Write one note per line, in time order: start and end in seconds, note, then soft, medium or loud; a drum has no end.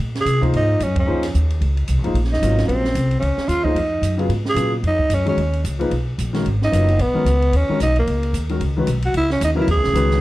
0.00 0.25 A#2 medium
0.15 snare soft
0.15 ride soft
0.21 0.43 G#4 medium
0.25 0.52 C3 medium
0.25 hi-hat pedal medium
0.25 ride medium
0.41 0.78 F3 medium
0.41 0.78 A#3 medium
0.41 0.78 D#4 medium
0.41 0.78 G#4 medium
0.41 0.78 C5 medium
0.41 kick medium
0.41 ride soft
0.53 0.80 G#2 medium
0.53 0.85 D#4 medium
0.53 ride medium
0.80 1.06 F#2 medium
0.80 0.98 C#4 medium
0.80 hi-hat pedal medium
0.80 ride medium
0.96 1.33 C#4 medium
0.96 kick medium
0.96 ride medium
1.06 1.34 F2 medium
1.06 1.21 F3 medium
1.06 1.21 A#3 soft
1.06 1.21 D#4 soft
1.06 1.22 G#4 medium
1.06 1.22 C5 medium
1.23 snare soft
1.23 ride medium
1.34 1.60 D#2 medium
1.34 hi-hat pedal soft
1.50 ride soft
1.61 1.87 C#2 medium
1.61 ride soft
1.77 ride soft
1.88 1.98 C2 medium
1.88 hi-hat pedal soft
1.88 ride medium
1.98 2.06 A#1 soft
2.04 2.13 G#1 medium
2.04 2.14 F3 medium
2.04 2.14 A#3 medium
2.04 2.14 D#4 medium
2.04 2.15 G#4 soft
2.04 2.15 C5 medium
2.04 ride soft
2.14 2.41 A#1 medium
2.14 ride soft
2.24 snare soft
2.33 2.67 D#4 medium
2.33 snare soft
2.42 2.68 G#1 medium
2.42 2.82 C3 soft
2.42 2.81 F#3 soft
2.42 2.82 F4 soft
2.42 2.82 A#4 soft
2.42 2.82 C#5 medium
2.42 hi-hat pedal medium
2.42 ride medium
2.58 snare soft
2.58 ride soft
2.68 2.94 A#1 medium
2.68 3.18 C4 medium
2.68 ride soft
2.84 snare soft
2.95 3.21 C2 medium
2.95 hi-hat pedal soft
2.95 ride medium
3.11 ride soft
3.20 3.37 C#2 medium
3.20 3.50 C#4 medium
3.20 ride medium
3.38 muted upright bass stroke soft
3.38 snare soft
3.48 3.73 D#2 medium
3.48 3.65 F4 medium
3.48 hi-hat pedal medium
3.48 ride medium
3.64 3.75 F3 medium
3.64 3.75 A#3 medium
3.64 4.18 D#4 medium
3.64 3.75 D#4 medium
3.64 3.75 G#4 medium
3.64 3.75 C5 medium
3.64 kick medium
3.74 4.01 F2 medium
3.74 ride medium
4.02 4.28 F#2 medium
4.02 hi-hat pedal soft
4.02 ride medium
4.17 4.28 C#3 medium
4.17 4.29 F#3 medium
4.17 4.29 B3 medium
4.17 4.29 F4 medium
4.17 4.29 G#4 medium
4.17 ride soft
4.29 4.54 G#2 medium
4.29 ride medium
4.45 snare soft
4.50 4.73 G#4 medium
4.54 4.82 A#2 medium
4.54 4.71 C#3 medium
4.54 4.70 F#3 medium
4.54 4.71 B3 soft
4.54 4.71 F4 medium
4.54 4.71 G#4 medium
4.54 hi-hat pedal medium
4.54 ride medium
4.83 5.09 F2 medium
4.83 ride medium
4.87 5.16 D#4 medium
4.99 kick soft
5.10 5.36 F#2 medium
5.10 hi-hat pedal medium
5.10 ride medium
5.14 5.28 C#4 medium
5.25 5.36 D#3 medium
5.25 5.36 G#3 medium
5.25 5.36 C#4 medium
5.25 5.63 C#4 medium
5.25 5.37 F#4 medium
5.25 5.36 G#4 medium
5.25 ride soft
5.37 5.63 D#2 medium
5.37 ride soft
5.53 ride soft
5.64 5.90 C#2 medium
5.64 hi-hat pedal medium
5.64 ride medium
5.79 5.90 F3 medium
5.79 5.90 A#3 medium
5.79 5.90 D#4 medium
5.79 5.90 G#4 medium
5.79 5.91 B4 medium
5.79 ride soft
5.91 6.17 B1 medium
5.91 ride medium
6.18 6.44 A#1 medium
6.18 hi-hat pedal soft
6.18 ride medium
6.33 6.44 D#3 medium
6.33 6.44 G#3 medium
6.33 6.44 C#4 medium
6.33 6.44 F#4 medium
6.33 6.45 A#4 medium
6.33 snare soft
6.33 ride soft
6.46 6.72 G#1 medium
6.46 ride soft
6.62 7.03 D#4 medium
6.62 snare soft
6.71 6.98 F#1 medium
6.71 6.86 F#3 medium
6.71 6.86 B3 soft
6.71 6.86 F4 soft
6.71 6.86 A#4 soft
6.71 6.86 C#5 medium
6.71 hi-hat pedal medium
6.71 ride medium
6.88 ride soft
6.99 7.14 A#1 medium
6.99 7.58 B3 medium
6.99 ride medium
7.14 7.24 D#3 medium
7.14 7.24 G#3 soft
7.14 7.25 C#4 medium
7.14 7.25 F#4 soft
7.14 7.25 A#4 medium
7.14 muted upright bass stroke soft
7.24 7.51 C#2 medium
7.24 hi-hat pedal soft
7.24 ride medium
7.42 ride soft
7.52 7.67 D#2 medium
7.52 7.81 C#4 medium
7.52 ride medium
7.69 7.79 D#3 medium
7.69 7.79 G#3 medium
7.69 7.79 C#4 medium
7.69 7.80 F#4 medium
7.69 7.80 A#4 medium
7.69 muted upright bass stroke soft
7.80 8.06 B1 medium
7.80 7.96 D#4 medium
7.80 hi-hat pedal medium
7.80 ride medium
7.96 8.47 A#3 medium
7.96 ride soft
8.07 8.32 C#2 medium
8.07 ride medium
8.23 ride soft
8.33 8.59 D#2 medium
8.33 hi-hat pedal medium
8.33 ride medium
8.49 8.59 D#3 medium
8.49 8.60 G#3 soft
8.49 8.60 C#4 soft
8.49 8.60 F#4 soft
8.49 8.60 A#4 medium
8.49 ride soft
8.60 8.86 C#2 medium
8.60 ride medium
8.77 8.86 D#3 medium
8.77 8.86 G#3 medium
8.77 8.87 C#4 medium
8.77 8.87 F#4 medium
8.77 8.87 B4 medium
8.87 9.13 B1 medium
8.87 hi-hat pedal medium
8.87 ride medium
9.02 9.15 F#4 medium
9.02 ride soft
9.14 9.40 C#2 medium
9.14 9.30 E4 medium
9.14 ride medium
9.30 9.41 C#4 medium
9.30 snare soft
9.41 9.67 D#2 medium
9.41 9.51 D#4 medium
9.41 hi-hat pedal medium
9.41 ride medium
9.55 9.66 C#3 medium
9.55 9.66 F#3 medium
9.55 9.66 B3 medium
9.55 9.66 E4 medium
9.55 9.67 A#4 medium
9.61 9.69 E4 medium
9.67 9.76 E2 medium
9.67 ride medium
9.71 10.21 G#4 loud
9.76 9.85 C#2 medium
9.84 9.93 B1 medium
9.84 snare soft
9.93 10.20 C#2 medium
9.93 10.21 D#3 medium
9.93 10.21 G#3 medium
9.93 10.21 C#4 medium
9.93 10.21 F#4 medium
9.93 10.21 B4 medium
9.93 hi-hat pedal medium
9.93 ride medium
10.11 snare soft